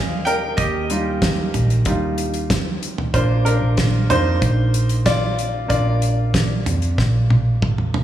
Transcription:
Already playing: fingered electric bass D#2, grand piano F3 D4 D#4 F4 G4 G#4 A#4 C5 D5 D#5 F5
0.25 grand piano A#4 G5, closed hi-hat
0.57 fingered electric bass D#2, grand piano G4 D#5, kick, closed hi-hat
0.90 grand piano G3 D#4 F4, closed hi-hat
1.22 kick, snare, closed hi-hat
1.54 fingered electric bass A#1, closed hi-hat, floor tom
1.70 closed hi-hat
1.85 fingered electric bass D#2, grand piano G3 D#4 F4, kick, closed hi-hat
2.18 closed hi-hat
2.34 closed hi-hat
2.50 kick, snare, closed hi-hat
2.83 closed hi-hat
2.98 floor tom
3.14 fingered electric bass A#1, grand piano A#3 D4 F4 C5, kick, closed hi-hat
3.45 grand piano D4 A#4, closed hi-hat
3.62 fingered electric bass A#1
3.77 kick, snare, closed hi-hat
4.09 fingered electric bass F2, grand piano A#3 D4 D#4 F4 C5, closed hi-hat, floor tom
4.42 fingered electric bass A#1, kick, closed hi-hat
4.74 closed hi-hat
4.89 closed hi-hat
5.06 grand piano F4 D5, kick, snare, closed hi-hat
5.39 closed hi-hat
5.68 fingered electric bass A#1, grand piano A#3 D4 F4 D5, kick, closed hi-hat
6.02 closed hi-hat
6.34 kick, snare, closed hi-hat
6.66 fingered electric bass F2, closed hi-hat, floor tom
6.82 closed hi-hat
6.98 fingered electric bass A#1, kick, snare
7.30 high tom
7.62 kick, mid tom
7.78 mid tom
7.94 floor tom

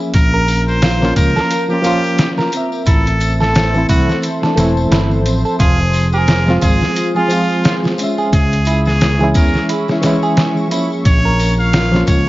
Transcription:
Already playing: reed electric piano F3 A#3 C#4, analog synth pad G#4 E5
0.00 tambourine
0.14 fingered electric bass A#1, analog synth pad F4 A#4, muted trumpet A#4, kick, closed hi-hat, tambourine
0.34 clean electric guitar A#4, tambourine
0.48 open hi-hat, tambourine
0.68 muted trumpet C5, tambourine
0.82 clean electric guitar F4, snare, closed hi-hat, tambourine
1.01 reed electric piano F3 A#3 C#4, snare, tambourine
1.05 reed electric piano F4
1.16 fingered electric bass C#2, muted trumpet A#4, kick, closed hi-hat, tambourine
1.36 clean electric guitar A#4, snare, tambourine
1.51 closed hi-hat, tambourine
1.69 reed electric piano F3 A#3 C#4, muted trumpet G4, tambourine
1.73 reed electric piano F4
1.82 reed electric piano F3 A#3 C#4, clean electric guitar F4, closed hi-hat, tambourine
1.86 reed electric piano F4
2.04 tambourine
2.18 snare, closed hi-hat, tambourine
2.37 clean electric guitar A#4, snare, tambourine
2.52 reed electric piano C4, closed hi-hat, tambourine
2.57 reed electric piano E5
2.72 tambourine
2.86 fingered electric bass A1, clean electric guitar E4, analog synth pad A4 C5 E5 C6, muted trumpet A4, kick, closed hi-hat, tambourine
3.06 closed hi-hat, tambourine
3.20 closed hi-hat, tambourine
3.40 clean electric guitar A4, muted trumpet A4, snare, tambourine
3.54 snare, closed hi-hat, tambourine
3.74 reed electric piano E3 A3 C4 E4, tambourine
3.89 fingered electric bass C2, clean electric guitar E4, muted trumpet F#4, kick, closed hi-hat, tambourine
4.09 snare, tambourine
4.22 closed hi-hat, tambourine
4.42 reed electric piano E3 A3 C4, clean electric guitar A4, snare, tambourine
4.46 reed electric piano D4
4.55 fingered electric bass E1, reed electric piano E3 A3 C4, snare, closed hi-hat, tambourine
4.59 reed electric piano E4
4.77 tambourine
4.91 fingered electric bass G1, clean electric guitar E4, snare, closed hi-hat, tambourine
5.11 tambourine
5.21 reed electric piano F3
5.26 fingered electric bass A1, reed electric piano C4, closed hi-hat, tambourine
5.45 clean electric guitar A4, tambourine
5.59 fingered electric bass F1, clean electric guitar F4, analog synth pad F4 G#4, muted trumpet G#4, kick, closed hi-hat, tambourine
5.79 tambourine
5.93 open hi-hat, tambourine
6.12 clean electric guitar G#4, muted trumpet A#4, tambourine
6.27 snare, closed hi-hat, tambourine
6.46 reed electric piano F3 G#3 C4, snare, tambourine
6.50 reed electric piano F4
6.61 fingered electric bass G#1, clean electric guitar F4, muted trumpet G#4, kick, closed hi-hat, tambourine
6.80 snare, tambourine
6.96 closed hi-hat, tambourine
7.15 reed electric piano F3 G#3 C4 F4, muted trumpet F4, clean electric guitar G#4, tambourine
7.29 reed electric piano F3 G#3 C4, closed hi-hat, tambourine
7.33 reed electric piano F4
7.49 tambourine
7.64 clean electric guitar F4, snare, closed hi-hat, tambourine
7.84 snare, tambourine
7.98 reed electric piano G#3 C#4, closed hi-hat, tambourine
8.04 reed electric piano E5
8.18 clean electric guitar G#4, tambourine
8.32 fingered electric bass C#2, analog synth pad G#4 E5 C#6, muted trumpet G#4, kick, closed hi-hat, tambourine
8.51 closed hi-hat, tambourine
8.65 clean electric guitar E4, closed hi-hat, tambourine
8.85 muted trumpet G#4, snare, tambourine
9.00 snare, closed hi-hat, tambourine
9.19 reed electric piano E3 G#3 C#4, clean electric guitar G#4, tambourine
9.24 reed electric piano E4
9.34 fingered electric bass E2, muted trumpet A#4, kick, closed hi-hat, tambourine
9.54 snare, tambourine
9.69 clean electric guitar E4, closed hi-hat, tambourine
9.88 reed electric piano E3 G#3 C#4, snare, tambourine
9.92 reed electric piano E4
10.02 reed electric piano E3 G#3 C#4, snare, closed hi-hat, tambourine
10.06 reed electric piano E4
10.23 clean electric guitar G#4, tambourine
10.37 snare, closed hi-hat, tambourine
10.57 tambourine
10.68 reed electric piano F3 A#3, closed hi-hat, tambourine
10.72 reed electric piano C#4, clean electric guitar E4
10.92 tambourine
11.05 fingered electric bass A#1, analog synth pad F4 A#4, muted trumpet C#5, kick, closed hi-hat, tambourine
11.25 clean electric guitar A#4, tambourine
11.39 open hi-hat, tambourine
11.60 muted trumpet F5, tambourine
11.73 clean electric guitar F4, snare, closed hi-hat, tambourine
11.92 reed electric piano F3 A#3 C#4, snare, tambourine
11.96 reed electric piano F4
12.07 fingered electric bass C#2, muted trumpet C#5, kick, closed hi-hat, tambourine

